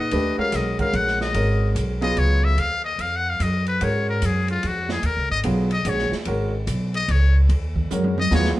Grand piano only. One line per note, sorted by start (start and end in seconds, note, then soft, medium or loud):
0.12 0.36 A3 medium
0.12 0.36 D4 medium
0.12 0.36 G4 medium
0.12 0.36 B4 medium
0.37 0.73 G#3 medium
0.37 0.74 C#4 medium
0.37 0.74 F#4 medium
0.37 0.74 A#4 medium
0.79 1.31 G#3 medium
0.79 1.32 C#4 medium
0.79 1.32 F#4 medium
0.79 1.32 A#4 medium
1.34 1.97 G#3 medium
1.34 1.97 C#4 medium
1.34 1.97 F#4 medium
1.34 1.97 A#4 medium
2.01 2.54 F#3 medium
2.01 2.54 B3 medium
2.01 2.54 F4 medium
2.01 2.55 G#4 medium
3.81 4.95 G#3 medium
3.81 4.95 C#4 medium
3.81 4.95 F#4 medium
3.81 4.96 A#4 medium
5.44 5.68 F#3 medium
5.44 5.68 B3 medium
5.44 5.68 F4 medium
5.44 5.68 G#4 medium
5.86 6.10 G#3 medium
5.86 6.10 C#4 medium
5.86 6.10 F#4 medium
5.86 6.10 G#4 medium
6.27 6.50 G#3 medium
6.27 6.50 C#4 medium
6.27 6.51 F#4 medium
6.27 6.51 A#4 medium
7.91 8.15 G#3 medium
7.91 8.15 C#4 medium
7.91 8.15 F#4 medium
7.91 8.15 A#4 medium
8.32 8.60 F#3 medium
8.32 8.60 B3 medium
8.32 8.60 F4 medium
8.32 8.60 G#4 medium